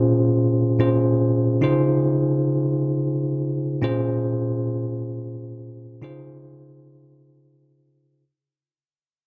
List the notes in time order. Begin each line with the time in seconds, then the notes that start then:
Already playing: A#2 C#4 F4 G#4 C5
0.79 A#2 C#4 F4 G#4 C5
1.61 C#3 D#4 F4 G#4 C5
3.82 A#2 C#4 F4 G#4 C5
6.02 C#3 D#4 F4 G#4 C5